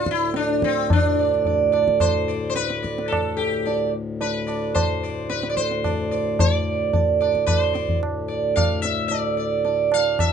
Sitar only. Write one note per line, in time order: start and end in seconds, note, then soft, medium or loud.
0.11 0.36 E4 medium
0.36 0.64 D4 medium
0.64 0.92 C4 medium
0.93 1.71 D4 medium
0.93 1.17 D5 soft
1.19 1.44 D5 soft
1.46 1.71 D5 soft
1.72 1.98 D5 soft
2.01 2.48 C5 medium
2.28 2.54 D5 soft
2.50 2.55 C5 medium
2.56 3.12 B4 medium
2.83 3.09 D5 soft
3.08 3.36 A4 medium
3.37 3.89 G4 medium
3.66 3.91 D5 soft
4.21 4.74 B4 medium
4.47 4.73 D5 soft
4.74 5.29 C5 medium
5.03 5.29 D5 soft
5.30 5.49 B4 medium
5.50 5.56 D5 medium
5.57 6.40 C5 medium
5.85 6.10 D5 soft
6.11 6.37 D5 soft
6.40 6.92 D5 medium
6.93 7.19 D5 soft
7.21 7.46 D5 soft
7.47 7.60 B4 medium
7.60 7.98 C5 medium
7.73 8.00 D5 soft
8.28 8.54 D5 soft
8.56 8.81 F5 medium
8.82 9.08 E5 medium
9.08 9.35 D5 medium
9.37 9.63 D5 soft
9.65 9.90 D5 soft
9.94 10.20 F5 medium
10.20 10.33 E5 medium